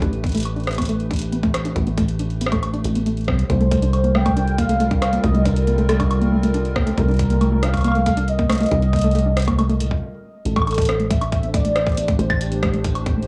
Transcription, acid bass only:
0.02 1.71 A1 loud
1.76 2.84 A1 loud
2.84 3.29 A1 medium
3.28 3.44 C2 medium
3.50 5.19 C2 loud
5.24 6.93 C2 loud
6.98 8.67 C2 loud
8.71 10.02 C2 loud
10.45 12.15 A1 loud
12.19 13.27 A1 loud

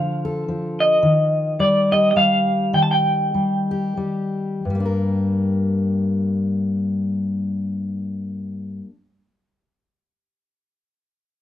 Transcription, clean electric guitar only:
0.00 0.43 F5 medium
0.80 1.60 D#5 medium
1.60 1.90 D5 medium
1.92 2.10 D#5 medium
2.11 2.16 D#5 medium
2.17 2.74 F5 medium
2.74 2.82 G5 medium
2.83 2.91 A5 medium
2.91 3.94 G5 medium

